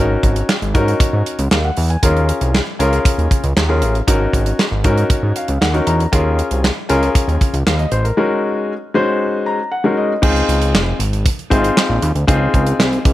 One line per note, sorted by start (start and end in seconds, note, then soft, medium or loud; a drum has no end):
0.00 0.17 G#1 loud
0.00 0.52 C#4 medium
0.00 0.52 D#4 medium
0.00 0.52 F#4 medium
0.00 0.52 A#4 medium
0.23 0.43 G#1 medium
0.23 kick medium
0.23 closed hi-hat medium
0.36 closed hi-hat medium
0.49 snare loud
0.49 clap medium
0.62 0.76 G#1 medium
0.62 closed hi-hat soft
0.74 0.94 G#2 loud
0.74 1.38 C#4 medium
0.74 1.38 D#4 medium
0.74 1.38 F#4 medium
0.74 1.38 A#4 loud
0.74 kick loud
0.74 closed hi-hat medium
0.88 closed hi-hat soft
1.00 1.05 G#2 soft
1.00 kick loud
1.00 closed hi-hat loud
1.13 1.23 G#2 medium
1.26 closed hi-hat medium
1.39 1.49 C#2 loud
1.39 closed hi-hat medium
1.51 1.71 D#2 medium
1.51 1.63 F5 medium
1.51 snare loud
1.51 clap loud
1.65 1.89 F#5 medium
1.77 1.97 E2 medium
1.77 open hi-hat medium
1.90 2.14 G#5 medium
1.90 closed hi-hat soft
2.03 2.32 D#2 medium
2.03 2.57 C#4 medium
2.03 2.57 F4 medium
2.03 2.58 G#4 medium
2.03 2.58 A#4 medium
2.03 kick loud
2.03 closed hi-hat loud
2.17 closed hi-hat soft
2.29 closed hi-hat medium
2.41 2.61 C2 medium
2.41 closed hi-hat medium
2.55 snare loud
2.55 clap medium
2.79 2.99 C#2 medium
2.79 3.43 C#4 medium
2.79 3.43 F4 medium
2.79 3.43 G#4 medium
2.79 3.44 A#4 loud
2.79 closed hi-hat medium
2.93 closed hi-hat soft
3.05 kick loud
3.05 closed hi-hat loud
3.18 3.28 D#2 medium
3.18 closed hi-hat soft
3.31 kick medium
3.31 closed hi-hat medium
3.44 3.54 C#2 medium
3.44 closed hi-hat medium
3.57 3.84 D#2 loud
3.57 snare loud
3.57 clap loud
3.68 3.96 C#4 medium
3.68 3.96 F4 medium
3.68 3.96 G#4 medium
3.68 3.97 A#4 medium
3.82 4.02 A1 loud
3.82 closed hi-hat medium
3.95 closed hi-hat soft
4.07 4.27 G#1 loud
4.07 4.62 C#4 medium
4.07 4.62 D#4 medium
4.07 4.62 F#4 medium
4.07 4.63 A#4 medium
4.07 kick medium
4.07 closed hi-hat loud
4.33 4.53 G#1 medium
4.33 kick medium
4.33 closed hi-hat medium
4.46 closed hi-hat medium
4.59 snare loud
4.59 clap medium
4.71 4.86 G#1 medium
4.84 5.04 G#2 loud
4.84 5.48 C#4 medium
4.84 5.48 D#4 medium
4.84 5.48 F#4 medium
4.84 5.48 A#4 loud
4.84 kick loud
4.84 closed hi-hat medium
4.98 closed hi-hat soft
5.10 5.15 G#2 soft
5.10 kick loud
5.10 closed hi-hat loud
5.23 5.33 G#2 medium
5.36 5.60 F5 medium
5.36 closed hi-hat medium
5.48 5.59 C#2 medium
5.48 closed hi-hat medium
5.61 5.81 D#2 medium
5.61 5.85 F#5 medium
5.61 snare loud
5.61 clap medium
5.73 6.01 C#4 medium
5.73 6.01 D#4 medium
5.73 6.01 F#4 medium
5.73 6.02 A#4 medium
5.73 closed hi-hat soft
5.87 6.07 E2 loud
5.87 6.11 A#5 medium
5.87 closed hi-hat medium
6.00 closed hi-hat soft
6.12 6.42 D#2 loud
6.12 6.67 C#4 medium
6.12 6.67 F4 medium
6.12 6.67 G#4 medium
6.12 6.67 A#4 medium
6.12 kick loud
6.12 closed hi-hat loud
6.39 closed hi-hat medium
6.51 6.71 C2 medium
6.51 closed hi-hat medium
6.64 snare loud
6.64 clap medium
6.89 7.09 C#2 medium
6.89 7.53 C#4 loud
6.89 7.53 F4 medium
6.89 7.53 G#4 medium
6.89 7.53 A#4 loud
6.89 closed hi-hat medium
7.03 closed hi-hat soft
7.15 kick loud
7.15 closed hi-hat loud
7.28 7.38 D#2 medium
7.28 closed hi-hat soft
7.41 kick loud
7.41 closed hi-hat medium
7.54 7.64 C#2 medium
7.54 closed hi-hat medium
7.66 7.86 D#2 medium
7.66 7.79 F5 medium
7.66 snare loud
7.66 clap loud
7.79 7.91 D#5 medium
7.79 closed hi-hat soft
7.92 8.12 A1 loud
7.92 8.04 C5 medium
7.92 closed hi-hat medium
8.04 8.16 A#4 medium
8.04 closed hi-hat soft
8.17 8.72 G#3 medium
8.17 8.72 C#4 medium
8.17 8.72 D#4 medium
8.17 8.72 F#4 medium
8.17 8.73 A#4 medium
8.94 9.58 G#3 medium
8.94 9.58 C#4 medium
8.94 9.58 D#4 medium
8.94 9.59 F#4 medium
8.94 9.59 C5 loud
9.46 9.70 A#5 medium
9.72 9.96 F#5 medium
9.84 10.12 G#3 medium
9.84 10.12 C#4 medium
9.84 10.12 D#4 medium
9.84 10.12 F#4 medium
9.84 10.12 A#4 medium
9.97 10.21 D#5 medium
10.22 10.43 C#2 loud
10.22 10.95 C4 medium
10.22 10.96 D#4 medium
10.22 10.96 F4 medium
10.22 10.96 G#4 loud
10.22 kick loud
10.22 crash loud
10.36 closed hi-hat soft
10.49 10.75 C#2 medium
10.49 closed hi-hat medium
10.62 closed hi-hat medium
10.74 10.94 F1 loud
10.74 snare loud
10.74 clap medium
11.00 11.29 G#1 medium
11.00 closed hi-hat medium
11.13 closed hi-hat soft
11.26 kick loud
11.26 closed hi-hat loud
11.39 closed hi-hat soft
11.50 11.71 G#1 medium
11.50 12.05 C4 medium
11.50 12.06 D#4 medium
11.50 11.57 E4 medium
11.50 12.06 G#4 medium
11.50 kick medium
11.50 closed hi-hat medium
11.57 12.09 F4 medium
11.64 closed hi-hat medium
11.77 snare loud
11.77 clap loud
11.89 11.99 A#1 medium
12.02 12.12 D#2 loud
12.02 closed hi-hat medium
12.15 12.25 D2 medium
12.15 closed hi-hat soft
12.27 12.48 C#2 loud
12.27 13.01 C4 loud
12.27 13.01 D#4 medium
12.27 13.01 F4 medium
12.27 13.01 G#4 loud
12.27 kick loud
12.27 closed hi-hat loud
12.54 12.74 C#2 loud
12.54 kick medium
12.54 closed hi-hat medium
12.67 closed hi-hat medium
12.79 12.99 C2 medium
12.79 snare loud
12.79 clap medium
12.93 closed hi-hat soft
13.05 13.13 C#2 medium
13.05 kick loud
13.05 closed hi-hat medium